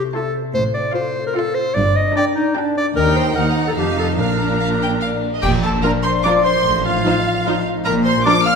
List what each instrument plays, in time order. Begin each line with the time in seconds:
Already playing: harp C3 C4 A4 C5 E5
0.14 viola section E4, clarinet A4, harp E5, violin section A5 C6
0.36 harp C5
0.54 double bass section A1, cello section A2, harp A2, clarinet C5
0.74 harp C4, clarinet D5
0.94 viola section F4, harp A4, clarinet C5, violin section F5 C6
1.16 harp C5
1.27 clarinet A#4
1.35 viola section F4, clarinet A4, violin section F5 C6, harp F5
1.55 clarinet C5, harp C5
1.74 double bass section G1, cello section G2, harp G2, clarinet D5
1.96 harp A#3, clarinet D#5
2.15 viola section D4, harp A#4, clarinet D5, violin section G5 A#5
2.35 harp D4, clarinet D#4
2.55 viola section D4, clarinet D4, harp D5, violin section G5 A#5
2.77 harp A#4, clarinet D5
2.95 cello section D#2, double bass section D#2, harp D#3, viola section D#4, clarinet A#4, violin section G5 A#5
3.16 harp D#4 G4, clarinet C5
3.35 cello section D#2, double bass section D#2, harp D#3, viola section D#4, clarinet A#4, violin section F#5 A#5
3.58 harp D#4 F#4
3.67 clarinet A4
3.76 double bass section F1, cello section F2, harp F3, viola section D#4, clarinet G4, violin section F5 A5
3.98 harp D#4 F4, clarinet A4
4.18 double bass section A#1, cello section A#2, harp A#2, viola section D4, clarinet A#4, violin section F5 A#5
4.40 harp A#3
4.60 harp F4, violin section F5
4.81 harp A#4, violin section G5
5.01 harp D5, violin section F5
5.22 harp A#4
5.33 violin section D#5
5.42 double bass section A#1, cello section A#2, harp A#2, oboe G4, clarinet G4, violin section G5, flute G5, concert bass drum, crash
5.53 harp F3
5.63 harp A#3, oboe A4, clarinet A4, violin section A5, flute A5
5.74 harp D4
5.81 french horn section F3 D4, viola section F3 D4, violin section F4 A#4 A#5, harp F4, oboe A#4, clarinet A#4
5.86 flute A#5
5.94 harp A#4
6.03 oboe C5, clarinet C5, harp D5, violin section C6, flute C6
6.14 harp F5
6.23 french horn section F3 D4, viola section F3 D4, violin section F4 A#4 D6, oboe D5, harp D5, clarinet D5, flute D6
6.35 harp F4
6.43 harp D4, oboe C5, clarinet C5, violin section C6, flute C6
6.55 harp F3
6.64 double bass section A1, cello section A2, harp A2
6.75 harp A3
6.84 harp C4, oboe F4, clarinet F4, violin section F5, flute F5
6.95 harp D#4
7.05 french horn section F3 D#4, viola section F3 D#4, harp F4, violin section F4 C5
7.15 harp C5
7.26 harp D#5
7.36 harp F5
7.46 french horn section F3 D#4, viola section F3 D#4, violin section F4 C5, harp D#5
7.57 harp F4
7.67 harp D#4
7.77 harp A3
7.84 double bass section A#1, cello section A#2, harp A#2, oboe A#4, clarinet A#4, violin section A#5, flute A#5
7.97 harp F3
8.04 harp A#3, clarinet C5, oboe C5, violin section C6, flute C6
8.18 harp D4
8.24 viola section F3 D4, french horn section F3 D4, violin section F4 A#4 D6, harp F4, clarinet D5, oboe D5, flute D6
8.37 harp A#4
8.45 harp D5, oboe F5, clarinet F5, violin section F6, flute F6